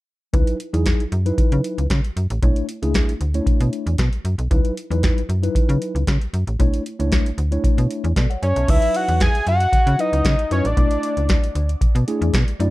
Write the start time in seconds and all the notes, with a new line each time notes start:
0.33 C#2 F#3 D#4 E4 B4, kick, closed hi-hat
0.47 closed hi-hat
0.60 closed hi-hat
0.73 E2 F#3 D#4 E4 G#4, closed hi-hat
0.86 kick, snare, closed hi-hat
1.00 closed hi-hat
1.12 F#2, closed hi-hat
1.25 F#3 D#4 E4 B4, closed hi-hat
1.38 C#3, kick, closed hi-hat
1.52 C#3, closed hi-hat
1.64 closed hi-hat
1.78 C#2, closed hi-hat
1.90 C#3, kick, snare, closed hi-hat
2.04 closed hi-hat
2.16 F#2, closed hi-hat
2.30 A1, closed hi-hat
2.42 B1 A3 D4 E4 C#5, kick, closed hi-hat
2.56 closed hi-hat
2.69 closed hi-hat
2.82 C#2 A3 D4 E4 G#4, closed hi-hat
2.94 kick, snare, closed hi-hat
3.09 closed hi-hat
3.21 D2, closed hi-hat
3.34 A3 C#4 E4 C#5, closed hi-hat
3.41 D4
3.46 B2, kick, closed hi-hat
3.60 B2, closed hi-hat
3.73 closed hi-hat
3.86 E2, closed hi-hat
3.98 B2, kick, snare, closed hi-hat
4.13 closed hi-hat
4.25 F#2, closed hi-hat
4.38 B1, closed hi-hat
4.51 C#2 F#3 D#4 E4 B4, kick, closed hi-hat
4.65 closed hi-hat
4.77 closed hi-hat
4.91 E2 F#3 D#4 E4 B4, closed hi-hat
5.03 kick, snare, closed hi-hat
5.18 closed hi-hat
5.29 F#2, closed hi-hat
5.43 F#3 D#4 E4 B4, closed hi-hat
5.55 C#3, kick, closed hi-hat
5.69 C#3, closed hi-hat
5.82 closed hi-hat
5.95 C#2, closed hi-hat
6.07 C#3, kick, snare, closed hi-hat
6.22 closed hi-hat
6.33 F#2, closed hi-hat
6.47 A1, closed hi-hat
6.59 B1 A3 D4 E4 C#5, kick, closed hi-hat
6.74 closed hi-hat
6.86 closed hi-hat
6.99 C#2 A3 D4 E4 C#5, closed hi-hat
7.12 kick, snare, closed hi-hat
7.26 closed hi-hat
7.38 D2, closed hi-hat
7.52 A3 D4 E4 C#5, closed hi-hat
7.64 B2, kick, closed hi-hat
7.78 B2, closed hi-hat
7.91 closed hi-hat
8.04 E2, closed hi-hat
8.16 B2 A4 D5, kick, snare, closed hi-hat
8.30 C#5 F#5, closed hi-hat
8.42 F#2 C#5 D5 G#5, closed hi-hat
8.56 B1 E5 A5, closed hi-hat
8.68 C#2 F#3 D#4 E4 B4 E5, kick, closed hi-hat, crash
8.82 closed hi-hat
8.95 F#5, closed hi-hat
9.08 E2, closed hi-hat
9.20 G#5, kick, snare, closed hi-hat
9.35 closed hi-hat
9.47 F#2 F#5, closed hi-hat
9.60 closed hi-hat
9.73 C#3, kick, closed hi-hat
9.87 C#3, closed hi-hat
9.99 F#3 D#4 E4 B4 D#5, closed hi-hat
10.13 C#2, closed hi-hat
10.25 C#3, kick, snare, closed hi-hat
10.39 closed hi-hat
10.51 F#2 F#3 D#4 E4 B4 C#5, closed hi-hat
10.65 A1 D5, closed hi-hat
10.77 B1 A3 D4 E4 D5, kick, closed hi-hat
10.91 closed hi-hat
11.03 closed hi-hat
11.17 C#2, closed hi-hat
11.29 kick, snare, closed hi-hat
11.44 closed hi-hat
11.55 D2, closed hi-hat
11.69 closed hi-hat
11.81 B2, kick, closed hi-hat
11.95 B2, closed hi-hat
12.08 A3 D4 E4 G#4, closed hi-hat
12.21 E2, closed hi-hat
12.34 B2, kick, snare, closed hi-hat
12.48 closed hi-hat
12.60 F#2 A3 D4 E4 D5, closed hi-hat